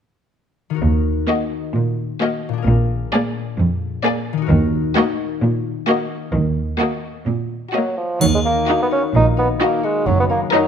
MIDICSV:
0, 0, Header, 1, 9, 480
1, 0, Start_track
1, 0, Key_signature, -6, "minor"
1, 0, Tempo, 470219
1, 828, Time_signature, 4, 2, 24, 8
1, 1782, Tempo, 459067
1, 6582, Tempo, 465477
1, 11057, End_track
2, 0, Start_track
2, 0, Title_t, "Violin section"
2, 0, Program_c, 0, 48
2, 1301, Note_on_c, 0, 75, 39
2, 1657, Note_off_c, 0, 75, 0
2, 2269, Note_on_c, 0, 75, 42
2, 2625, Note_off_c, 0, 75, 0
2, 3228, Note_on_c, 0, 74, 45
2, 3585, Note_off_c, 0, 74, 0
2, 4183, Note_on_c, 0, 74, 50
2, 4544, Note_off_c, 0, 74, 0
2, 5142, Note_on_c, 0, 75, 50
2, 5501, Note_off_c, 0, 75, 0
2, 6101, Note_on_c, 0, 75, 48
2, 6457, Note_off_c, 0, 75, 0
2, 7051, Note_on_c, 0, 75, 42
2, 7413, Note_off_c, 0, 75, 0
2, 8021, Note_on_c, 0, 75, 39
2, 8391, Note_off_c, 0, 75, 0
2, 8998, Note_on_c, 0, 75, 40
2, 9357, Note_off_c, 0, 75, 0
2, 9956, Note_on_c, 0, 75, 43
2, 10309, Note_off_c, 0, 75, 0
2, 10912, Note_on_c, 0, 75, 48
2, 11057, Note_off_c, 0, 75, 0
2, 11057, End_track
3, 0, Start_track
3, 0, Title_t, "Violin section"
3, 0, Program_c, 1, 48
3, 1315, Note_on_c, 1, 66, 37
3, 1664, Note_off_c, 1, 66, 0
3, 2271, Note_on_c, 1, 66, 41
3, 2626, Note_off_c, 1, 66, 0
3, 3229, Note_on_c, 1, 68, 49
3, 3586, Note_off_c, 1, 68, 0
3, 4186, Note_on_c, 1, 68, 48
3, 4545, Note_off_c, 1, 68, 0
3, 5146, Note_on_c, 1, 66, 54
3, 5503, Note_off_c, 1, 66, 0
3, 6100, Note_on_c, 1, 66, 47
3, 6456, Note_off_c, 1, 66, 0
3, 7054, Note_on_c, 1, 66, 46
3, 7415, Note_off_c, 1, 66, 0
3, 8010, Note_on_c, 1, 66, 31
3, 8385, Note_off_c, 1, 66, 0
3, 8995, Note_on_c, 1, 66, 41
3, 9356, Note_off_c, 1, 66, 0
3, 9966, Note_on_c, 1, 66, 42
3, 10314, Note_off_c, 1, 66, 0
3, 10901, Note_on_c, 1, 70, 50
3, 11057, Note_off_c, 1, 70, 0
3, 11057, End_track
4, 0, Start_track
4, 0, Title_t, "Harp"
4, 0, Program_c, 2, 46
4, 713, Note_on_c, 2, 51, 33
4, 737, Note_on_c, 2, 63, 25
4, 760, Note_on_c, 2, 66, 27
4, 778, Note_on_c, 2, 70, 23
4, 2558, Note_on_c, 2, 46, 37
4, 2605, Note_on_c, 2, 62, 34
4, 2651, Note_on_c, 2, 68, 32
4, 2686, Note_off_c, 2, 70, 0
4, 2699, Note_on_c, 2, 70, 32
4, 2721, Note_off_c, 2, 66, 0
4, 2744, Note_off_c, 2, 63, 0
4, 2767, Note_off_c, 2, 51, 0
4, 4483, Note_on_c, 2, 51, 44
4, 4531, Note_on_c, 2, 63, 37
4, 4576, Note_on_c, 2, 66, 37
4, 4594, Note_off_c, 2, 46, 0
4, 4612, Note_off_c, 2, 70, 0
4, 4617, Note_off_c, 2, 62, 0
4, 4624, Note_on_c, 2, 70, 35
4, 4640, Note_off_c, 2, 68, 0
4, 8446, Note_off_c, 2, 51, 0
4, 8470, Note_off_c, 2, 63, 0
4, 8492, Note_off_c, 2, 66, 0
4, 8516, Note_off_c, 2, 70, 0
4, 8516, Note_on_c, 2, 51, 41
4, 8762, Note_on_c, 2, 63, 31
4, 8997, Note_on_c, 2, 70, 34
4, 9235, Note_on_c, 2, 66, 34
4, 9475, Note_on_c, 2, 58, 35
4, 9697, Note_off_c, 2, 63, 0
4, 9710, Note_on_c, 2, 63, 34
4, 9939, Note_off_c, 2, 70, 0
4, 9951, Note_on_c, 2, 70, 36
4, 10175, Note_off_c, 2, 66, 0
4, 10187, Note_on_c, 2, 66, 36
4, 10423, Note_on_c, 2, 42, 43
4, 10448, Note_off_c, 2, 51, 0
4, 10652, Note_off_c, 2, 63, 0
4, 10664, Note_on_c, 2, 63, 35
4, 10889, Note_off_c, 2, 70, 0
4, 10901, Note_on_c, 2, 70, 43
4, 11057, Note_off_c, 2, 42, 0
4, 11057, Note_off_c, 2, 58, 0
4, 11057, Note_off_c, 2, 63, 0
4, 11057, Note_off_c, 2, 66, 0
4, 11057, Note_off_c, 2, 70, 0
4, 11057, End_track
5, 0, Start_track
5, 0, Title_t, "Bassoon"
5, 0, Program_c, 3, 70
5, 8026, Note_on_c, 3, 54, 49
5, 8255, Note_off_c, 3, 54, 0
5, 8268, Note_on_c, 3, 53, 40
5, 8504, Note_off_c, 3, 53, 0
5, 8511, Note_on_c, 3, 54, 55
5, 8567, Note_off_c, 3, 54, 0
5, 8655, Note_on_c, 3, 56, 53
5, 8706, Note_off_c, 3, 56, 0
5, 8763, Note_on_c, 3, 58, 56
5, 9117, Note_off_c, 3, 58, 0
5, 9147, Note_on_c, 3, 59, 52
5, 9195, Note_off_c, 3, 59, 0
5, 9247, Note_on_c, 3, 61, 56
5, 9354, Note_off_c, 3, 61, 0
5, 9491, Note_on_c, 3, 63, 64
5, 9596, Note_off_c, 3, 63, 0
5, 9727, Note_on_c, 3, 59, 54
5, 9832, Note_off_c, 3, 59, 0
5, 9960, Note_on_c, 3, 58, 53
5, 10195, Note_on_c, 3, 56, 56
5, 10210, Note_off_c, 3, 58, 0
5, 10423, Note_on_c, 3, 54, 61
5, 10438, Note_off_c, 3, 56, 0
5, 10545, Note_off_c, 3, 54, 0
5, 10564, Note_on_c, 3, 59, 59
5, 10614, Note_off_c, 3, 59, 0
5, 10671, Note_on_c, 3, 58, 50
5, 10776, Note_off_c, 3, 58, 0
5, 10906, Note_on_c, 3, 54, 56
5, 11057, Note_off_c, 3, 54, 0
5, 11057, End_track
6, 0, Start_track
6, 0, Title_t, "Viola section"
6, 0, Program_c, 4, 48
6, 1302, Note_on_c, 4, 58, 36
6, 1657, Note_off_c, 4, 58, 0
6, 2268, Note_on_c, 4, 58, 39
6, 2624, Note_off_c, 4, 58, 0
6, 3221, Note_on_c, 4, 58, 45
6, 3581, Note_off_c, 4, 58, 0
6, 4179, Note_on_c, 4, 58, 47
6, 4541, Note_off_c, 4, 58, 0
6, 5141, Note_on_c, 4, 58, 54
6, 5500, Note_off_c, 4, 58, 0
6, 6095, Note_on_c, 4, 58, 45
6, 6454, Note_off_c, 4, 58, 0
6, 7052, Note_on_c, 4, 58, 41
6, 7414, Note_off_c, 4, 58, 0
6, 8027, Note_on_c, 4, 58, 33
6, 8394, Note_off_c, 4, 58, 0
6, 9004, Note_on_c, 4, 63, 40
6, 9360, Note_off_c, 4, 63, 0
6, 9950, Note_on_c, 4, 63, 40
6, 10306, Note_off_c, 4, 63, 0
6, 10901, Note_on_c, 4, 63, 50
6, 11057, Note_off_c, 4, 63, 0
6, 11057, End_track
7, 0, Start_track
7, 0, Title_t, "Cello section"
7, 0, Program_c, 5, 48
7, 827, Note_on_c, 5, 39, 44
7, 1207, Note_off_c, 5, 39, 0
7, 1781, Note_on_c, 5, 46, 48
7, 2166, Note_off_c, 5, 46, 0
7, 2741, Note_on_c, 5, 46, 54
7, 3123, Note_off_c, 5, 46, 0
7, 3702, Note_on_c, 5, 41, 59
7, 4085, Note_off_c, 5, 41, 0
7, 4664, Note_on_c, 5, 51, 59
7, 5043, Note_off_c, 5, 51, 0
7, 5623, Note_on_c, 5, 46, 58
7, 6004, Note_off_c, 5, 46, 0
7, 6575, Note_on_c, 5, 51, 54
7, 6954, Note_off_c, 5, 51, 0
7, 7542, Note_on_c, 5, 46, 51
7, 7925, Note_off_c, 5, 46, 0
7, 8514, Note_on_c, 5, 51, 54
7, 8899, Note_off_c, 5, 51, 0
7, 9478, Note_on_c, 5, 46, 49
7, 9854, Note_off_c, 5, 46, 0
7, 10430, Note_on_c, 5, 42, 55
7, 10804, Note_off_c, 5, 42, 0
7, 11057, End_track
8, 0, Start_track
8, 0, Title_t, "Double bass section"
8, 0, Program_c, 6, 48
8, 829, Note_on_c, 6, 39, 42
8, 1208, Note_off_c, 6, 39, 0
8, 2749, Note_on_c, 6, 34, 53
8, 3127, Note_off_c, 6, 34, 0
8, 4671, Note_on_c, 6, 39, 67
8, 5046, Note_off_c, 6, 39, 0
8, 6578, Note_on_c, 6, 39, 55
8, 6956, Note_off_c, 6, 39, 0
8, 8519, Note_on_c, 6, 39, 48
8, 8901, Note_off_c, 6, 39, 0
8, 9481, Note_on_c, 6, 34, 51
8, 9856, Note_off_c, 6, 34, 0
8, 10430, Note_on_c, 6, 30, 55
8, 10804, Note_off_c, 6, 30, 0
8, 11057, End_track
9, 0, Start_track
9, 0, Title_t, "Drums"
9, 8515, Note_on_c, 9, 81, 30
9, 8618, Note_off_c, 9, 81, 0
9, 11057, End_track
0, 0, End_of_file